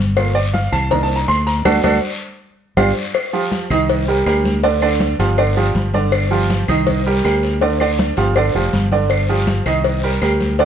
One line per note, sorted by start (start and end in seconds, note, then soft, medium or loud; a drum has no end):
0.00 0.67 G1 medium
0.16 0.33 A3 medium
0.16 0.33 A#3 soft
0.16 0.34 F4 medium
0.16 cowbell loud
0.16 long guiro medium
0.16 claves medium
0.35 0.53 D5 medium
0.35 high conga soft
0.54 0.72 F5 medium
0.54 cowbell medium
0.54 high conga loud
0.54 short guiro medium
0.72 1.24 C2 medium
0.72 0.91 A5 medium
0.72 cowbell medium
0.72 low conga medium
0.72 short guiro medium
0.72 claves medium
0.91 1.62 A#3 medium
0.91 1.62 D4 medium
0.91 1.62 D#4 medium
0.91 1.03 A#5 loud
0.91 cowbell loud
0.91 high conga soft
0.91 low conga medium
0.91 long guiro medium
1.03 1.15 A5 medium
1.10 high conga soft
1.16 1.28 A#5 medium
1.28 1.63 D2 loud
1.28 1.46 C6 loud
1.28 cowbell medium
1.28 high conga soft
1.28 short guiro medium
1.28 claves medium
1.47 1.65 A#5 loud
1.47 cowbell medium
1.47 short guiro medium
1.65 1.79 D2 loud
1.65 1.77 D4 loud
1.65 1.77 F#4 loud
1.65 1.77 A4 loud
1.65 cowbell loud
1.65 high conga loud
1.65 long guiro loud
1.65 claves loud
1.84 1.98 D2 loud
1.84 1.96 D4 loud
1.84 1.96 F#4 loud
1.84 1.96 A4 loud
1.84 cowbell loud
1.84 high conga loud
1.84 long guiro medium
1.84 claves medium
2.77 2.91 G1 medium
2.77 2.89 D4 medium
2.77 2.89 F4 loud
2.77 2.89 G4 loud
2.77 cowbell loud
2.77 high conga loud
2.77 long guiro medium
2.77 claves loud
3.14 cowbell loud
3.14 high conga soft
3.14 long guiro medium
3.14 claves medium
3.33 3.64 F3 medium
3.33 3.64 F4 medium
3.33 3.64 G4 medium
3.33 high conga soft
3.52 cowbell medium
3.52 high conga medium
3.52 short guiro medium
3.70 4.22 C2 medium
3.70 4.01 D#3 medium
3.70 4.01 D#4 medium
3.70 4.01 D#5 medium
3.70 cowbell medium
3.70 low conga medium
3.70 short guiro medium
3.70 claves medium
3.89 cowbell loud
3.89 high conga soft
3.89 long guiro medium
4.08 4.23 G3 medium
4.08 4.23 G4 medium
4.08 4.24 A#4 medium
4.08 high conga soft
4.26 5.13 D2 loud
4.26 4.57 G3 medium
4.26 4.57 G4 medium
4.26 4.57 A#4 medium
4.26 cowbell medium
4.26 high conga soft
4.26 short guiro medium
4.26 claves medium
4.45 cowbell medium
4.45 high conga medium
4.45 short guiro medium
4.64 4.79 D3 medium
4.64 4.79 D4 medium
4.64 4.79 D5 medium
4.64 cowbell loud
4.64 long guiro medium
4.82 5.13 D3 medium
4.82 5.13 D4 medium
4.82 5.13 D5 medium
4.82 high conga soft
4.82 claves medium
5.00 cowbell medium
5.00 high conga loud
5.00 short guiro medium
5.19 5.71 G1 medium
5.19 5.35 F3 medium
5.19 5.35 F4 medium
5.19 5.35 G4 medium
5.19 cowbell medium
5.19 high conga soft
5.19 short guiro medium
5.38 5.53 D3 medium
5.38 5.53 D4 medium
5.38 5.54 D5 medium
5.38 cowbell medium
5.38 high conga soft
5.38 long guiro medium
5.38 claves medium
5.57 5.87 F3 medium
5.57 5.88 F4 medium
5.57 5.88 G4 medium
5.57 high conga soft
5.75 6.62 G1 loud
5.75 cowbell medium
5.75 high conga medium
5.75 short guiro medium
5.94 6.25 D3 medium
5.94 6.25 D4 medium
5.94 6.25 D5 medium
5.94 cowbell medium
5.94 high conga medium
5.94 short guiro medium
6.12 cowbell loud
6.12 long guiro medium
6.12 claves medium
6.31 6.62 F3 medium
6.31 6.62 F4 medium
6.31 6.62 G4 medium
6.31 high conga soft
6.50 cowbell medium
6.50 high conga loud
6.50 short guiro medium
6.68 7.20 C2 medium
6.68 6.99 D#3 medium
6.68 6.99 D#4 loud
6.68 7.00 D#5 medium
6.68 cowbell medium
6.68 low conga medium
6.68 short guiro medium
6.68 claves medium
6.86 cowbell loud
6.86 high conga soft
6.86 low conga medium
6.86 long guiro medium
7.06 7.21 G3 medium
7.06 7.21 G4 medium
7.06 7.22 A#4 medium
7.06 high conga soft
7.24 8.11 D2 loud
7.24 7.55 G3 medium
7.24 7.55 G4 medium
7.24 7.55 A#4 medium
7.24 cowbell medium
7.24 high conga soft
7.24 short guiro medium
7.24 claves medium
7.43 cowbell medium
7.43 short guiro medium
7.61 7.77 D3 medium
7.61 7.77 D4 medium
7.61 7.77 D5 medium
7.61 cowbell loud
7.61 high conga soft
7.61 long guiro medium
7.80 8.11 D3 medium
7.80 8.11 D4 medium
7.80 8.11 D5 medium
7.80 high conga soft
7.80 claves medium
7.98 cowbell medium
7.98 high conga loud
7.98 short guiro medium
8.17 8.52 G1 medium
8.17 8.33 F3 medium
8.17 8.33 F4 medium
8.17 8.33 G4 medium
8.17 cowbell medium
8.17 high conga soft
8.17 short guiro medium
8.36 8.51 D3 medium
8.36 8.52 D4 medium
8.36 8.52 D5 medium
8.36 cowbell loud
8.36 high conga soft
8.36 long guiro medium
8.36 claves medium
8.54 8.72 F1 medium
8.54 8.85 F3 medium
8.54 8.86 F4 medium
8.54 8.86 G4 medium
8.54 high conga soft
8.73 9.60 G1 medium
8.73 cowbell medium
8.73 high conga medium
8.73 short guiro medium
8.92 9.22 D3 medium
8.92 9.23 D4 medium
8.92 9.23 D5 medium
8.92 cowbell medium
8.92 high conga medium
8.92 short guiro medium
9.10 cowbell loud
9.10 high conga soft
9.10 long guiro medium
9.10 claves medium
9.29 9.60 F3 medium
9.29 9.60 F4 medium
9.29 9.60 G4 medium
9.29 high conga soft
9.47 cowbell medium
9.47 high conga loud
9.47 short guiro medium
9.66 10.18 C2 medium
9.66 9.97 D#3 medium
9.66 9.97 D#4 medium
9.66 9.97 D#5 medium
9.66 cowbell medium
9.66 low conga medium
9.66 short guiro medium
9.66 claves medium
9.85 cowbell loud
9.85 high conga soft
9.85 long guiro medium
10.03 10.19 G3 medium
10.03 10.19 G4 medium
10.03 10.19 A#4 medium
10.03 high conga soft
10.22 10.65 D2 loud
10.22 10.53 G3 medium
10.22 10.53 G4 medium
10.22 10.53 A#4 medium
10.22 cowbell medium
10.22 high conga soft
10.22 short guiro medium
10.22 claves medium
10.40 cowbell medium
10.40 high conga medium
10.40 short guiro medium
10.59 10.65 D3 medium
10.59 10.65 D4 medium
10.59 10.65 D5 medium
10.59 cowbell loud
10.59 long guiro medium